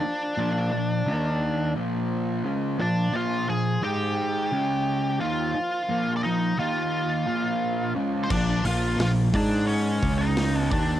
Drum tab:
CC |--------|--------|--------|x-------|
HH |--------|--------|--------|-ooooooo|
SD |--------|--------|--------|--o---o-|
BD |--------|--------|--------|o--o-o-o|